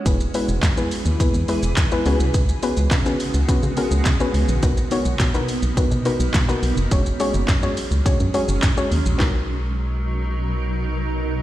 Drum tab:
HH |x-o-x-o-x-o-x-o-|x-o-x-o-x-o-x-o-|x-o-x-o-x-o-x-o-|x-o-x-o-x-o-x-o-|
SH |xxxxxxxxxxxxxxxx|xxxxxxxxxxxxxxxx|xxxxxxxxxxxxxxxx|xxxxxxxxxxxxxxxx|
CP |----x-------x---|----x-------x---|----x-------x---|----x-------x---|
SD |----o-------o---|----o-------o---|----o-------o---|----o-------o---|
BD |o---o---o---o---|o---o---o---o---|o---o---o---o---|o---o---o---o---|

HH |----------------|
SH |----------------|
CP |x---------------|
SD |o---------------|
BD |o---------------|